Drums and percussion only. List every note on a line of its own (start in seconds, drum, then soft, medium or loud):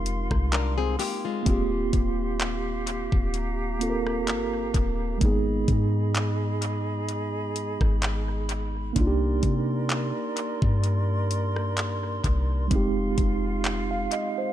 0.06 closed hi-hat medium
0.31 kick medium
0.31 cross-stick medium
0.52 clap loud
0.52 closed hi-hat medium
0.99 open hi-hat medium
1.46 kick loud
1.46 closed hi-hat medium
1.93 kick loud
1.93 closed hi-hat medium
2.40 clap loud
2.40 closed hi-hat medium
2.87 closed hi-hat medium
3.12 kick loud
3.34 closed hi-hat medium
3.81 closed hi-hat medium
4.07 cross-stick medium
4.27 clap loud
4.27 closed hi-hat medium
4.74 kick loud
4.74 closed hi-hat medium
5.21 kick loud
5.21 closed hi-hat medium
5.68 kick medium
5.68 closed hi-hat medium
6.15 clap loud
6.15 closed hi-hat medium
6.62 closed hi-hat medium
7.09 closed hi-hat medium
7.56 closed hi-hat medium
7.81 kick loud
7.81 cross-stick medium
8.02 clap loud
8.02 closed hi-hat medium
8.49 closed hi-hat medium
8.96 kick loud
8.96 closed hi-hat medium
9.43 kick loud
9.43 closed hi-hat medium
9.90 clap loud
9.90 closed hi-hat medium
10.37 closed hi-hat medium
10.62 kick loud
10.84 closed hi-hat medium
11.31 closed hi-hat medium
11.56 cross-stick medium
11.77 clap loud
11.77 closed hi-hat medium
12.24 kick loud
12.24 closed hi-hat medium
12.71 kick loud
12.71 closed hi-hat medium
13.18 kick loud
13.18 closed hi-hat medium
13.64 clap loud
13.64 closed hi-hat medium
14.12 closed hi-hat medium